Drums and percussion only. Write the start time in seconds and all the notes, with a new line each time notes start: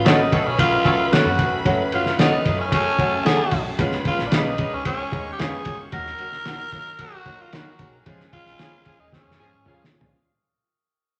0.06 snare, ride
0.32 kick, ride
0.59 kick, ride
0.85 kick, ride
1.13 snare, ride
1.39 kick, ride
1.66 kick, ride
1.92 ride
2.06 snare
2.19 snare, ride
2.45 kick, ride
2.72 kick, ride
2.99 kick, ride
3.26 snare, ride
3.51 kick, open hi-hat, ride
3.79 kick, hi-hat pedal, ride
3.92 snare
4.05 kick, ride
4.19 snare
4.32 snare, ride
4.58 kick, ride
4.85 kick, ride
5.12 kick, ride
5.39 snare, ride
5.65 kick, ride
5.92 kick, ride
6.06 snare
6.18 ride
6.32 snare
6.45 snare, ride
6.72 kick, ride
6.99 kick, ride
7.25 kick, ride
7.53 snare, ride
7.79 kick, ride
8.06 kick, ride
8.20 snare
8.33 kick, ride
8.46 snare
8.59 snare, ride
8.85 kick, ride
9.13 kick, snare
9.31 snare
9.66 mid tom
9.84 snare
10.01 floor tom